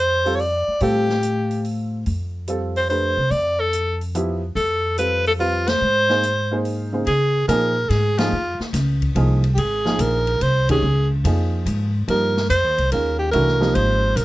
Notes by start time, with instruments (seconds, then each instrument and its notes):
Already playing: upright bass F2
0.00 alto saxophone C5
0.25 grand piano G3 C4 F4 A4, open hi-hat
0.35 alto saxophone C#5
0.39 alto saxophone D5, open hi-hat
0.68 muted upright bass stroke
0.80 upright bass A2, grand piano G3 C4 F4 A4, alto saxophone G4, open hi-hat
1.09 snare
1.23 closed hi-hat
1.51 open hi-hat
1.64 open hi-hat
2.06 upright bass F2, open hi-hat
2.47 grand piano G3 C4 F4 A4, closed hi-hat
2.76 alto saxophone C5, open hi-hat
2.90 grand piano A3 D4 G4 B4, alto saxophone C5, open hi-hat
3.17 upright bass C3
3.31 upright bass F2, alto saxophone D5, open hi-hat
3.60 alto saxophone A4
3.73 closed hi-hat
4.01 open hi-hat
4.15 grand piano F3 B3 E4 G4, closed hi-hat
4.55 upright bass F2, alto saxophone A4, open hi-hat
4.98 grand piano G3 C4 F4 A4, alto saxophone B4, closed hi-hat
5.26 alto saxophone A4, open hi-hat
5.39 grand piano G3 C4 F4 B4, alto saxophone F4, open hi-hat
5.67 alto saxophone C5, snare, ride
5.81 upright bass G#2
6.09 grand piano A#3 D#4 G#4 C5, snare
6.23 closed hi-hat
6.51 grand piano A#3 D#4 G#4 C5
6.65 open hi-hat
6.92 grand piano C#3 A#3 D#4 G#4 C5
7.07 upright bass C#3, alto saxophone G#4, ride
7.48 upright bass A#2, grand piano F3 A#3 D#4 G#4, alto saxophone A#4, hi-hat pedal, ride
7.89 upright bass G#2, alto saxophone G#4, snare, ride
8.18 grand piano F3 A#3 D#4 G#4, alto saxophone F4, snare, ride
8.32 upright bass F2
8.59 muted upright bass stroke, snare
8.73 upright bass C#2, snare, hi-hat pedal, ride
9.02 kick, ride
9.15 upright bass C2, grand piano F3 A#3 D#4 G#4, ride
9.44 ride
9.55 upright bass G#1, alto saxophone G4 G#4, ride
9.85 grand piano F3 A#3 D#4 G#4, snare
9.99 upright bass A#1, alto saxophone A#4, hi-hat pedal, ride
10.27 ride
10.41 upright bass C2, alto saxophone C5, ride
10.69 grand piano D#3 G#3 C#4 G4, alto saxophone G#4, kick, ride
10.82 upright bass C#2
11.24 upright bass F2, grand piano F3 A#3 D#4 G#4, ride
11.66 upright bass G#2, hi-hat pedal, ride
12.08 upright bass G2, grand piano F3 A#3 D#4 G4, alto saxophone A#4, ride
12.37 snare
12.50 upright bass F2, alto saxophone C5, hi-hat pedal, ride
12.64 upright bass D#2
12.78 upright bass C2, ride
12.92 upright bass D#2, grand piano D#3 G#3 C#4 F4, alto saxophone A#4, ride
13.19 alto saxophone G4
13.31 upright bass C2, grand piano E3 A3 D4 F#4, alto saxophone A#4, ride
13.48 snare
13.61 grand piano F3 A#3 D#4 G4, snare
13.75 upright bass G#1, alto saxophone C5, ride
14.16 upright bass A#1, alto saxophone A#4, hi-hat pedal, ride